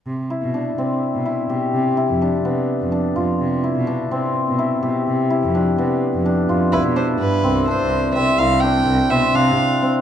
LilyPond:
<<
  \new Staff \with { instrumentName = "Violin" } { \time 7/8 \key c \major \tempo 4 = 126 r2. r8 | r2. r8 | r2. r8 | r2. r8 |
b'8 c''8 b'4 c''4 e''8 | f''8 g''4 e''8 f''4 r8 | }
  \new Staff \with { instrumentName = "Hammered dulcimer" } { \time 7/8 \key c \major r8 e'8 d'8 c'4 e'8 g'8 | r8 e'8 d'8 b4 d'8 f'8 | r8 e'8 d'8 c'4 e'8 g'8 | r8 e'8 d'8 b4 d'8 f'8 |
e'8 d'4 c'8 d'4 c'8 | e'8 d'4 c'8 d'4 c'8 | }
  \new Staff \with { instrumentName = "Cello" } { \clef bass \time 7/8 \key c \major c8 r16 b,8. c8 r16 b,8. b,16 r16 | c8 r16 f,8. c8 r16 f,8. f,16 r16 | c8 r16 b,8. c8 r16 b,8. b,16 r16 | c8 r16 f,8. c8 r16 f,8. f,16 r16 |
c,16 b,8. g,16 r16 c,8. c,8. c8 | c,4 c,8 b,8 c8 r4 | }
>>